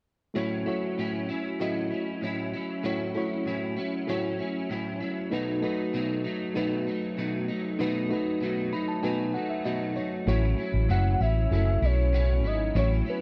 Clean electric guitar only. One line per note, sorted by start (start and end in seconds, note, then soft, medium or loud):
0.35 0.67 A2 medium
0.35 0.67 F#3 medium
0.35 0.66 C#4 medium
0.35 0.65 E4 medium
0.66 0.98 F#3 soft
0.66 0.98 C#4 soft
0.66 0.98 E4 medium
0.98 1.29 A2 soft
0.98 1.29 F#3 medium
0.98 1.29 C#4 medium
0.98 1.27 E4 medium
1.29 1.60 F#3 soft
1.29 1.60 C#4 soft
1.29 1.60 E4 medium
1.60 1.91 A2 medium
1.60 1.91 F#3 medium
1.60 1.91 C#4 medium
1.60 1.89 E4 medium
1.91 2.22 F#3 soft
1.91 2.22 C#4 soft
1.91 2.22 E4 medium
2.21 2.53 A2 medium
2.21 2.54 F#3 medium
2.21 2.54 C#4 medium
2.21 2.52 E4 medium
2.54 2.83 F#3 soft
2.54 2.84 C#4 soft
2.54 2.84 E4 soft
2.84 3.15 A2 medium
2.84 3.15 F#3 medium
2.84 3.15 C#4 medium
2.84 3.13 E4 medium
3.15 3.46 F#3 soft
3.15 3.46 C#4 soft
3.15 3.46 E4 soft
3.46 3.77 A2 medium
3.46 3.78 F#3 medium
3.46 3.77 C#4 medium
3.46 3.75 E4 medium
3.76 4.08 F#3 soft
3.76 4.08 C#4 medium
3.76 4.08 E4 medium
4.08 4.39 A2 medium
4.08 4.40 F#3 medium
4.08 4.39 C#4 medium
4.08 4.37 E4 medium
4.39 4.70 F#3 soft
4.39 4.70 C#4 soft
4.39 4.70 E4 soft
4.70 5.01 A2 medium
4.70 5.02 F#3 medium
4.70 5.01 C#4 medium
4.70 4.99 E4 medium
5.00 5.31 F#3 soft
5.00 5.33 C#4 soft
5.00 5.32 E4 medium
5.32 5.63 B2 medium
5.32 5.63 F#3 medium
5.32 5.62 A3 medium
5.32 5.61 D#4 medium
5.62 5.93 F#3 soft
5.62 5.94 A3 soft
5.62 5.94 D#4 medium
5.93 6.25 B2 medium
5.93 6.25 F#3 medium
5.93 6.25 A3 medium
5.93 6.23 D#4 medium
6.24 6.55 F#3 soft
6.24 6.56 A3 soft
6.24 6.56 D#4 medium
6.56 6.87 B2 medium
6.56 6.87 F#3 medium
6.56 6.87 A3 medium
6.56 6.86 D#4 medium
6.87 7.17 F#3 soft
6.87 7.18 A3 soft
6.87 7.18 D#4 soft
7.17 7.49 B2 medium
7.17 7.49 F#3 medium
7.17 7.49 A3 medium
7.17 7.47 D#4 medium
7.48 7.79 F#3 soft
7.48 7.80 A3 soft
7.48 7.80 D#4 medium
7.79 8.11 B2 medium
7.79 8.11 F#3 medium
7.79 8.11 A3 medium
7.79 8.09 D#4 medium
8.10 8.41 F#3 soft
8.10 8.42 A3 soft
8.10 8.42 D#4 soft
8.41 8.73 B2 medium
8.41 8.73 F#3 medium
8.41 8.73 A3 medium
8.41 8.71 D#4 medium
8.73 9.03 F#3 soft
8.73 9.04 A3 soft
8.73 9.04 D#4 medium
9.03 9.35 B2 medium
9.03 9.35 F#3 medium
9.03 9.34 A3 medium
9.03 9.33 D#4 loud
9.34 9.64 F#3 soft
9.34 9.65 A3 soft
9.34 9.66 D#4 medium
9.65 9.96 B2 medium
9.65 9.97 F#3 medium
9.65 9.96 A3 medium
9.65 9.95 D#4 medium
9.96 10.27 F#3 soft
9.96 10.28 A3 soft
9.96 10.27 D#4 soft
10.27 10.59 A2 medium
10.27 10.59 F#3 medium
10.27 10.59 C#4 medium
10.27 10.57 E4 medium
10.58 10.88 F#3 soft
10.58 10.89 C#4 soft
10.58 10.90 E4 medium
10.89 11.20 A2 medium
10.89 11.21 F#3 medium
10.89 11.21 C#4 medium
10.89 11.19 E4 medium
11.20 11.51 F#3 soft
11.20 11.52 C#4 soft
11.20 11.52 E4 soft
11.51 11.83 A2 medium
11.51 11.83 F#3 medium
11.51 11.83 C#4 medium
11.51 11.81 E4 medium
11.82 12.13 F#3 soft
11.82 12.14 C#4 soft
11.82 12.14 E4 soft
12.13 12.44 A2 medium
12.13 12.45 F#3 medium
12.13 12.44 C#4 medium
12.13 12.43 E4 medium
12.44 12.75 F#3 soft
12.44 12.75 C#4 soft
12.44 12.75 E4 soft
12.75 13.06 A2 medium
12.75 13.07 F#3 medium
12.75 13.07 C#4 medium
12.75 13.05 E4 medium
13.06 13.21 F#3 soft
13.06 13.21 C#4 soft
13.06 13.21 E4 soft